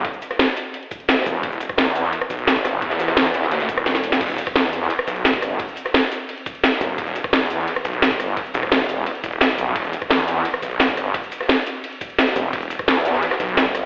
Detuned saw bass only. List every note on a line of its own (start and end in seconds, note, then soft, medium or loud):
1.26 1.42 E1 medium
1.43 1.59 E1 loud
1.78 2.11 E2 loud
2.30 2.46 B1 loud
2.47 2.81 G1 loud
2.82 3.42 E2 loud
3.42 3.67 D#2 loud
3.69 4.19 E1 loud
4.21 4.37 E1 loud
4.56 4.89 E2 loud
5.08 5.24 B1 loud
5.25 5.58 G1 loud
6.81 6.97 E1 loud
6.98 7.14 E1 loud
7.33 7.66 E2 loud
7.85 8.01 B1 loud
8.02 8.36 G1 loud
8.54 9.05 E1 loud
9.24 9.57 E1 loud
9.58 9.74 B1 loud
9.76 9.92 E1 loud
10.10 10.44 E2 loud
10.62 10.78 B1 loud
10.80 11.13 G1 loud
12.36 12.52 E1 medium
12.53 12.69 E1 loud
12.88 13.21 E2 loud
13.40 13.56 B1 loud
13.57 13.86 G1 loud